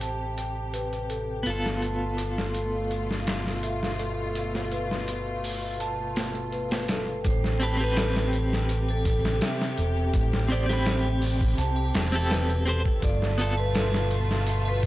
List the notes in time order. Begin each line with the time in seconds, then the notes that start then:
Already playing: A1 C3 C4 G4 A4 C5 B5
0.01 A5, closed hi-hat
0.38 closed hi-hat
0.73 B4, closed hi-hat
0.93 closed hi-hat
1.09 A4, closed hi-hat
1.43 G1 B2 A3 B3 F4 A4, closed hi-hat
1.50 A4
1.66 snare
1.82 A5, closed hi-hat
2.17 A4, closed hi-hat
2.38 snare
2.55 closed hi-hat
2.91 closed hi-hat
3.11 snare
3.27 snare, closed hi-hat
3.47 snare
3.63 E5, closed hi-hat
3.83 snare
3.99 A4, closed hi-hat
4.35 closed hi-hat
4.55 snare
4.72 B4, closed hi-hat
4.91 snare
5.08 closed hi-hat
5.44 open hi-hat
5.80 A5, closed hi-hat
6.16 snare, closed hi-hat
6.35 closed hi-hat
6.52 B4, closed hi-hat
6.71 snare, closed hi-hat
6.88 A4, snare, closed hi-hat
7.24 A1 C3 G4 A4 C5, kick, closed hi-hat, shaker
7.44 snare
7.60 C4 G4 B4 A5, closed hi-hat, shaker
7.77 C4 G4, triangle, shaker
7.81 B4
7.96 A4, snare, closed hi-hat, shaker
8.17 snare
8.32 closed hi-hat, shaker
8.51 snare, shaker
8.69 closed hi-hat, shaker
8.89 A4, triangle
9.05 kick, closed hi-hat, shaker
9.25 snare, shaker
9.41 E5, snare, closed hi-hat, shaker
9.61 snare
9.77 E1 A4, closed hi-hat, shaker
9.96 shaker
10.14 A1, kick, closed hi-hat, shaker
10.33 snare
10.48 C4 G4 C5 D5, closed hi-hat, shaker
10.66 C4 G4, snare, triangle, shaker
10.73 B5
10.86 snare, closed hi-hat, shaker
11.22 open hi-hat, shaker
11.41 kick, shaker
11.58 C2 A5, closed hi-hat, shaker
11.76 triangle
11.93 E1, snare, closed hi-hat, shaker
12.12 C4 G4 A4, triangle, shaker
12.30 B4, snare, closed hi-hat, shaker
12.50 closed hi-hat
12.65 C4 G4 A4 C5, closed hi-hat, shaker
12.85 kick, shaker
13.02 G1 B2 A3 F4 A4 D5, kick, closed hi-hat, shaker
13.22 snare
13.38 B3 F4 A4 A5, closed hi-hat, shaker
13.57 B4, triangle, shaker
13.75 A4, snare, closed hi-hat, shaker
13.94 snare
14.11 closed hi-hat, shaker
14.29 snare, shaker
14.46 closed hi-hat, shaker
14.65 B4, triangle
14.82 kick, closed hi-hat, shaker